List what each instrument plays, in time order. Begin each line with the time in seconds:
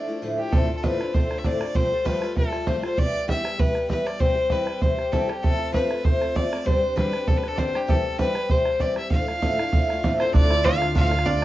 Already playing: fiddle D5
0.07 twelve-string acoustic guitar F3 A3 D4 E4
0.22 twelve-string acoustic guitar D2 A2 F3 A3 D4 E4
0.38 twelve-string acoustic guitar F3 A3 D4 E4, fiddle G4
0.52 twelve-string acoustic guitar D2 A2 D3 A3 C4 F4, fiddle A4, bodhran
0.62 bodhran
0.69 twelve-string acoustic guitar D3 A3 C4 F4
0.77 fiddle A4
0.83 twelve-string acoustic guitar D2 A2 D3 A3 C4 F4, fiddle B4, bodhran
0.99 twelve-string acoustic guitar D3 A3 C4 F4, bodhran
1.13 twelve-string acoustic guitar D3 A3 C4 F4, fiddle C5, bodhran
1.29 twelve-string acoustic guitar D3 A3 C4 F4, bodhran
1.38 fiddle E5
1.44 twelve-string acoustic guitar D2 A2 D3 A3 C4 F4, fiddle D5, bodhran
1.60 twelve-string acoustic guitar D3 A3 C4 F4, bodhran
1.74 twelve-string acoustic guitar F2 C3 F3 G3 A3 F4, fiddle C5, bodhran
1.91 twelve-string acoustic guitar F3 G3 A3 F4
2.04 twelve-string acoustic guitar F2 C3 F3 G3 A3 F4, fiddle B4, bodhran
2.21 twelve-string acoustic guitar F3 G3 A3 F4, bodhran
2.35 twelve-string acoustic guitar F3 G3 A3 F4, fiddle A4, bodhran
2.52 twelve-string acoustic guitar F3 G3 A3 F4, bodhran
2.66 twelve-string acoustic guitar F2 C3 F3 G3 A3 F4, fiddle C5, bodhran
2.83 twelve-string acoustic guitar F3 G3 A3 F4, fiddle C5, bodhran
2.97 twelve-string acoustic guitar E3 G3 B3 G4, fiddle D5, bodhran
3.06 bodhran
3.13 twelve-string acoustic guitar G3 B3 G4
3.28 twelve-string acoustic guitar E3 G3 B3 G4, fiddle E5, bodhran
3.44 twelve-string acoustic guitar G3 B3 G4, bodhran
3.58 twelve-string acoustic guitar E3 G3 B3 G4, fiddle B4, bodhran
3.74 twelve-string acoustic guitar G3 B3 G4, bodhran
3.89 twelve-string acoustic guitar E3 G3 B3 G4, fiddle B4, bodhran
4.05 twelve-string acoustic guitar G3 B3 G4, fiddle D5, bodhran
4.19 twelve-string acoustic guitar C3 E3 G3 C4 G4, fiddle C5, bodhran
4.35 twelve-string acoustic guitar G3 C4 G4
4.50 twelve-string acoustic guitar C3 E3 G3 C4 G4, fiddle B4, bodhran
4.67 twelve-string acoustic guitar G3 C4 G4, bodhran
4.81 twelve-string acoustic guitar E3 G3 C4 G4, fiddle C5, bodhran
4.98 twelve-string acoustic guitar G3 C4 G4, bodhran
5.12 twelve-string acoustic guitar C3 E3 G3 C4 G4, fiddle A4, bodhran
5.28 twelve-string acoustic guitar G3 C4 G4, fiddle G4, bodhran
5.43 twelve-string acoustic guitar F3 A3 C4 F4, fiddle A4, bodhran
5.52 bodhran
5.58 twelve-string acoustic guitar A3 C4 F4
5.72 twelve-string acoustic guitar F3 A3 C4 F4, fiddle B4, bodhran
5.89 twelve-string acoustic guitar A3 C4 F4, bodhran
6.04 twelve-string acoustic guitar F3 A3 C4 F4, fiddle C5, bodhran
6.20 twelve-string acoustic guitar A3 C4 F4, bodhran
6.34 twelve-string acoustic guitar F3 A3 C4 F4, fiddle D5, bodhran
6.50 twelve-string acoustic guitar A3 C4 F4, bodhran
6.65 twelve-string acoustic guitar G2 D3 G3 C4 D4 G4, fiddle C5, bodhran
6.75 bodhran
6.81 twelve-string acoustic guitar G3 C4 D4 G4
6.96 twelve-string acoustic guitar G2 D3 G3 C4 D4 G4, fiddle B4, bodhran
7.12 twelve-string acoustic guitar G3 C4 D4 G4, bodhran
7.26 twelve-string acoustic guitar G3 C4 D4 G4, fiddle A4, bodhran
7.37 fiddle B4
7.43 twelve-string acoustic guitar G3 C4 D4 G4, bodhran
7.48 fiddle A4
7.55 twelve-string acoustic guitar G2 D3 G3 C4 D4 G4, fiddle C5 D5, bodhran
7.73 twelve-string acoustic guitar G3 C4 D4 G4, fiddle G4, bodhran
7.87 twelve-string acoustic guitar C3 E3 G3 C4 G4, fiddle A4, bodhran
7.98 bodhran
8.04 twelve-string acoustic guitar G3 C4 G4
8.18 twelve-string acoustic guitar C3 E3 G3 C4 G4, fiddle B4, bodhran
8.34 twelve-string acoustic guitar G3 C4 G4, bodhran
8.49 twelve-string acoustic guitar E3 G3 C4 G4, fiddle C5, bodhran
8.65 twelve-string acoustic guitar G3 C4 G4, bodhran
8.79 twelve-string acoustic guitar C3 E3 G3 C4 G4, fiddle D5, bodhran
8.96 twelve-string acoustic guitar G3 C4 G4, fiddle E5, bodhran
9.10 twelve-string acoustic guitar D2 A2 F3 A3 D4 E4, fiddle F5, bodhran
9.19 bodhran
9.28 twelve-string acoustic guitar F3 A3 D4 E4, bodhran
9.41 twelve-string acoustic guitar D2 A2 F3 A3 D4 E4, bodhran
9.58 twelve-string acoustic guitar F3 A3 D4 E4, bodhran
9.72 twelve-string acoustic guitar F3 A3 D4 E4, bodhran
9.89 twelve-string acoustic guitar F3 A3 D4 E4, bodhran
10.03 twelve-string acoustic guitar D2 A2 F3 A3 D4 E4, bodhran
10.19 twelve-string acoustic guitar F3 A3 D4 E4, hammered dulcimer C4, fiddle C5, bodhran
10.33 twelve-string acoustic guitar D2 A2 D3 A3 D4 F4, upright bass D2, hammered dulcimer D4, fiddle D5, bodhran
10.50 twelve-string acoustic guitar D3 A3 D4 F4, hammered dulcimer E4, bodhran
10.64 twelve-string acoustic guitar D3 A3 D4 F4, hammered dulcimer F4, fiddle F5, bodhran
10.81 twelve-string acoustic guitar D3 A3 D4 F4, bodhran
10.95 twelve-string acoustic guitar D2 A2 D3 A3 D4 F4, hammered dulcimer F4, fiddle F5, bodhran
11.04 bodhran
11.11 twelve-string acoustic guitar D3 A3 D4 F4, bodhran
11.19 bodhran
11.25 twelve-string acoustic guitar D3 A3 D4 F4, hammered dulcimer D4, fiddle D5, bodhran